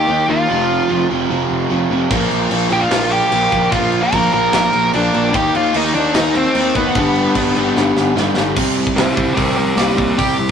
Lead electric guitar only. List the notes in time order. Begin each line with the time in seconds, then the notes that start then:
Already playing: G4 G5
0.29 F4 F5
2.72 G4 G5
2.81 F4 F5
3.11 G4 G5
3.71 F4 F5
4.03 A#4 A#5
4.33 A#4 A#5
4.94 D4 D5
5.35 G4 G5
5.56 F4 F5
5.76 D#4 D#5
5.94 D4 D5
6.15 D#4 D#5
6.35 C4 C5
6.76 B3 B4
8.96 E4 C5
9.15 E4 C5
9.35 G4 A#4
9.56 G4 A#4
9.76 A#3 G4
9.97 A#3 G4
10.18 G4